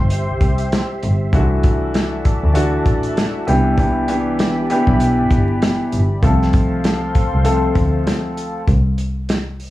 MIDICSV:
0, 0, Header, 1, 5, 480
1, 0, Start_track
1, 0, Key_signature, 0, "major"
1, 0, Tempo, 612245
1, 1044, Time_signature, 4, 2, 24, 8
1, 7606, End_track
2, 0, Start_track
2, 0, Title_t, "Analog synth pad"
2, 0, Program_c, 0, 89
2, 0, Note_on_c, 0, 67, 76
2, 0, Note_on_c, 0, 72, 79
2, 0, Note_on_c, 0, 76, 78
2, 0, Note_on_c, 0, 84, 86
2, 1032, Note_off_c, 0, 67, 0
2, 1032, Note_off_c, 0, 72, 0
2, 1032, Note_off_c, 0, 84, 0
2, 1040, Note_on_c, 0, 74, 78
2, 1041, Note_on_c, 0, 66, 83
2, 1042, Note_on_c, 0, 81, 85
2, 2705, Note_off_c, 0, 66, 0
2, 2705, Note_off_c, 0, 74, 0
2, 2706, Note_off_c, 0, 81, 0
2, 2720, Note_on_c, 0, 67, 84
2, 2721, Note_on_c, 0, 83, 90
2, 2722, Note_on_c, 0, 74, 73
2, 4859, Note_off_c, 0, 76, 0
2, 4860, Note_off_c, 0, 67, 0
2, 4860, Note_off_c, 0, 83, 0
2, 4861, Note_off_c, 0, 74, 0
2, 4869, Note_on_c, 0, 72, 78
2, 4870, Note_on_c, 0, 69, 82
2, 4870, Note_on_c, 0, 77, 78
2, 4870, Note_on_c, 0, 84, 88
2, 6777, Note_off_c, 0, 69, 0
2, 6777, Note_off_c, 0, 72, 0
2, 6777, Note_off_c, 0, 77, 0
2, 6777, Note_off_c, 0, 84, 0
2, 7606, End_track
3, 0, Start_track
3, 0, Title_t, "Grand piano"
3, 0, Program_c, 1, 0
3, 1047, Note_on_c, 1, 52, 99
3, 1051, Note_on_c, 1, 57, 86
3, 1054, Note_on_c, 1, 62, 88
3, 1058, Note_on_c, 1, 66, 104
3, 1942, Note_off_c, 1, 52, 0
3, 1944, Note_off_c, 1, 57, 0
3, 1945, Note_off_c, 1, 62, 0
3, 1947, Note_off_c, 1, 66, 0
3, 1986, Note_on_c, 1, 52, 92
3, 1990, Note_on_c, 1, 57, 88
3, 1994, Note_on_c, 1, 62, 93
3, 1997, Note_on_c, 1, 66, 105
3, 2708, Note_off_c, 1, 52, 0
3, 2716, Note_off_c, 1, 62, 0
3, 2717, Note_off_c, 1, 57, 0
3, 2719, Note_on_c, 1, 52, 102
3, 2720, Note_off_c, 1, 66, 0
3, 2723, Note_on_c, 1, 59, 92
3, 2728, Note_on_c, 1, 62, 93
3, 2731, Note_on_c, 1, 67, 104
3, 2945, Note_off_c, 1, 52, 0
3, 2948, Note_off_c, 1, 59, 0
3, 2950, Note_off_c, 1, 62, 0
3, 2952, Note_off_c, 1, 67, 0
3, 2962, Note_on_c, 1, 52, 99
3, 2966, Note_on_c, 1, 59, 91
3, 2970, Note_on_c, 1, 62, 87
3, 2973, Note_on_c, 1, 67, 99
3, 3187, Note_off_c, 1, 52, 0
3, 3189, Note_off_c, 1, 59, 0
3, 3191, Note_off_c, 1, 62, 0
3, 3192, Note_off_c, 1, 67, 0
3, 3199, Note_on_c, 1, 52, 109
3, 3202, Note_on_c, 1, 59, 95
3, 3207, Note_on_c, 1, 62, 88
3, 3211, Note_on_c, 1, 67, 105
3, 3650, Note_off_c, 1, 52, 0
3, 3651, Note_off_c, 1, 59, 0
3, 3653, Note_off_c, 1, 62, 0
3, 3655, Note_off_c, 1, 67, 0
3, 3685, Note_on_c, 1, 52, 107
3, 3688, Note_on_c, 1, 59, 95
3, 3692, Note_on_c, 1, 62, 89
3, 3696, Note_on_c, 1, 67, 106
3, 4683, Note_off_c, 1, 52, 0
3, 4685, Note_off_c, 1, 59, 0
3, 4687, Note_off_c, 1, 62, 0
3, 4689, Note_off_c, 1, 67, 0
3, 4881, Note_on_c, 1, 53, 100
3, 4885, Note_on_c, 1, 57, 93
3, 4890, Note_on_c, 1, 60, 86
3, 4894, Note_on_c, 1, 69, 105
3, 5779, Note_off_c, 1, 53, 0
3, 5781, Note_off_c, 1, 57, 0
3, 5783, Note_off_c, 1, 60, 0
3, 5785, Note_off_c, 1, 69, 0
3, 5834, Note_on_c, 1, 53, 92
3, 5837, Note_on_c, 1, 57, 94
3, 5841, Note_on_c, 1, 60, 89
3, 5845, Note_on_c, 1, 69, 108
3, 6735, Note_off_c, 1, 53, 0
3, 6737, Note_off_c, 1, 57, 0
3, 6739, Note_off_c, 1, 60, 0
3, 6741, Note_off_c, 1, 69, 0
3, 7606, End_track
4, 0, Start_track
4, 0, Title_t, "Double bass"
4, 0, Program_c, 2, 43
4, 230, Note_on_c, 2, 36, 51
4, 301, Note_off_c, 2, 36, 0
4, 323, Note_on_c, 2, 36, 94
4, 517, Note_off_c, 2, 36, 0
4, 808, Note_on_c, 2, 31, 94
4, 1000, Note_off_c, 2, 31, 0
4, 1044, Note_on_c, 2, 36, 108
4, 1873, Note_off_c, 2, 36, 0
4, 1908, Note_on_c, 2, 38, 98
4, 1987, Note_off_c, 2, 38, 0
4, 2242, Note_on_c, 2, 33, 94
4, 2436, Note_off_c, 2, 33, 0
4, 2728, Note_on_c, 2, 36, 105
4, 3616, Note_off_c, 2, 36, 0
4, 3821, Note_on_c, 2, 35, 97
4, 3903, Note_off_c, 2, 35, 0
4, 4068, Note_on_c, 2, 31, 50
4, 4140, Note_off_c, 2, 31, 0
4, 4163, Note_on_c, 2, 31, 92
4, 4357, Note_off_c, 2, 31, 0
4, 4649, Note_on_c, 2, 31, 89
4, 4840, Note_off_c, 2, 31, 0
4, 4884, Note_on_c, 2, 36, 111
4, 5713, Note_off_c, 2, 36, 0
4, 5750, Note_on_c, 2, 36, 99
4, 5828, Note_off_c, 2, 36, 0
4, 6083, Note_on_c, 2, 38, 91
4, 6277, Note_off_c, 2, 38, 0
4, 6804, Note_on_c, 2, 36, 105
4, 7606, Note_off_c, 2, 36, 0
4, 7606, End_track
5, 0, Start_track
5, 0, Title_t, "Drums"
5, 80, Note_on_c, 9, 42, 100
5, 159, Note_off_c, 9, 42, 0
5, 320, Note_on_c, 9, 36, 97
5, 320, Note_on_c, 9, 42, 74
5, 398, Note_off_c, 9, 42, 0
5, 399, Note_off_c, 9, 36, 0
5, 456, Note_on_c, 9, 42, 60
5, 535, Note_off_c, 9, 42, 0
5, 567, Note_on_c, 9, 42, 98
5, 571, Note_on_c, 9, 38, 116
5, 646, Note_off_c, 9, 42, 0
5, 650, Note_off_c, 9, 38, 0
5, 805, Note_on_c, 9, 42, 70
5, 883, Note_off_c, 9, 42, 0
5, 1041, Note_on_c, 9, 36, 114
5, 1042, Note_on_c, 9, 42, 76
5, 1120, Note_off_c, 9, 36, 0
5, 1120, Note_off_c, 9, 42, 0
5, 1281, Note_on_c, 9, 42, 76
5, 1285, Note_on_c, 9, 36, 106
5, 1360, Note_off_c, 9, 42, 0
5, 1364, Note_off_c, 9, 36, 0
5, 1523, Note_on_c, 9, 42, 91
5, 1531, Note_on_c, 9, 38, 115
5, 1602, Note_off_c, 9, 42, 0
5, 1610, Note_off_c, 9, 38, 0
5, 1764, Note_on_c, 9, 42, 74
5, 1767, Note_on_c, 9, 36, 94
5, 1843, Note_off_c, 9, 42, 0
5, 1845, Note_off_c, 9, 36, 0
5, 2000, Note_on_c, 9, 42, 102
5, 2078, Note_off_c, 9, 42, 0
5, 2239, Note_on_c, 9, 42, 75
5, 2240, Note_on_c, 9, 36, 102
5, 2318, Note_off_c, 9, 36, 0
5, 2318, Note_off_c, 9, 42, 0
5, 2377, Note_on_c, 9, 42, 60
5, 2455, Note_off_c, 9, 42, 0
5, 2487, Note_on_c, 9, 42, 101
5, 2491, Note_on_c, 9, 38, 116
5, 2565, Note_off_c, 9, 42, 0
5, 2569, Note_off_c, 9, 38, 0
5, 2726, Note_on_c, 9, 42, 67
5, 2804, Note_off_c, 9, 42, 0
5, 2961, Note_on_c, 9, 36, 115
5, 2962, Note_on_c, 9, 42, 76
5, 3039, Note_off_c, 9, 36, 0
5, 3040, Note_off_c, 9, 42, 0
5, 3200, Note_on_c, 9, 42, 78
5, 3279, Note_off_c, 9, 42, 0
5, 3442, Note_on_c, 9, 42, 96
5, 3450, Note_on_c, 9, 38, 111
5, 3521, Note_off_c, 9, 42, 0
5, 3529, Note_off_c, 9, 38, 0
5, 3684, Note_on_c, 9, 42, 75
5, 3762, Note_off_c, 9, 42, 0
5, 3819, Note_on_c, 9, 36, 88
5, 3897, Note_off_c, 9, 36, 0
5, 3920, Note_on_c, 9, 42, 100
5, 3998, Note_off_c, 9, 42, 0
5, 4159, Note_on_c, 9, 42, 76
5, 4160, Note_on_c, 9, 36, 97
5, 4238, Note_off_c, 9, 42, 0
5, 4239, Note_off_c, 9, 36, 0
5, 4407, Note_on_c, 9, 42, 98
5, 4411, Note_on_c, 9, 38, 119
5, 4485, Note_off_c, 9, 42, 0
5, 4489, Note_off_c, 9, 38, 0
5, 4645, Note_on_c, 9, 42, 66
5, 4723, Note_off_c, 9, 42, 0
5, 4882, Note_on_c, 9, 36, 118
5, 4882, Note_on_c, 9, 42, 78
5, 4960, Note_off_c, 9, 36, 0
5, 4961, Note_off_c, 9, 42, 0
5, 5032, Note_on_c, 9, 38, 40
5, 5111, Note_off_c, 9, 38, 0
5, 5121, Note_on_c, 9, 42, 75
5, 5125, Note_on_c, 9, 36, 103
5, 5199, Note_off_c, 9, 42, 0
5, 5204, Note_off_c, 9, 36, 0
5, 5363, Note_on_c, 9, 42, 91
5, 5371, Note_on_c, 9, 38, 116
5, 5442, Note_off_c, 9, 42, 0
5, 5449, Note_off_c, 9, 38, 0
5, 5604, Note_on_c, 9, 42, 73
5, 5607, Note_on_c, 9, 36, 97
5, 5683, Note_off_c, 9, 42, 0
5, 5685, Note_off_c, 9, 36, 0
5, 5839, Note_on_c, 9, 42, 101
5, 5917, Note_off_c, 9, 42, 0
5, 6079, Note_on_c, 9, 42, 73
5, 6080, Note_on_c, 9, 36, 101
5, 6158, Note_off_c, 9, 42, 0
5, 6159, Note_off_c, 9, 36, 0
5, 6326, Note_on_c, 9, 42, 100
5, 6330, Note_on_c, 9, 38, 117
5, 6405, Note_off_c, 9, 42, 0
5, 6408, Note_off_c, 9, 38, 0
5, 6565, Note_on_c, 9, 42, 69
5, 6643, Note_off_c, 9, 42, 0
5, 6801, Note_on_c, 9, 36, 112
5, 6801, Note_on_c, 9, 42, 75
5, 6880, Note_off_c, 9, 36, 0
5, 6880, Note_off_c, 9, 42, 0
5, 7040, Note_on_c, 9, 42, 74
5, 7118, Note_off_c, 9, 42, 0
5, 7283, Note_on_c, 9, 42, 90
5, 7291, Note_on_c, 9, 38, 107
5, 7361, Note_off_c, 9, 42, 0
5, 7369, Note_off_c, 9, 38, 0
5, 7525, Note_on_c, 9, 46, 50
5, 7603, Note_off_c, 9, 46, 0
5, 7606, End_track
0, 0, End_of_file